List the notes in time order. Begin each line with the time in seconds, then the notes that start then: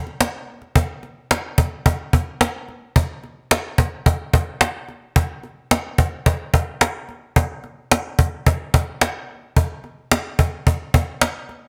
0.07 cajon slap
0.21 cajon slap
0.62 cajon slap
0.76 cajon bass
1.03 cajon slap
1.31 cajon slap
1.58 cajon bass
1.86 cajon bass
2.13 cajon bass
2.41 cajon slap
2.69 cajon slap
2.96 cajon bass
3.23 cajon slap
3.51 cajon slap
3.78 cajon bass
4.06 cajon bass
4.33 cajon bass
4.61 cajon slap
4.88 cajon slap
5.16 cajon bass
5.43 cajon slap
5.71 cajon slap
5.98 cajon bass
6.26 cajon bass
6.54 cajon bass
6.81 cajon slap
7.09 cajon slap
7.36 cajon bass
7.64 cajon slap
7.92 cajon slap
8.19 cajon bass
8.46 cajon bass
8.74 cajon bass
9.01 cajon slap
9.56 cajon bass
9.84 cajon slap
10.12 cajon slap
10.39 cajon bass
10.67 cajon bass
10.94 cajon bass
11.21 cajon slap
11.49 cajon slap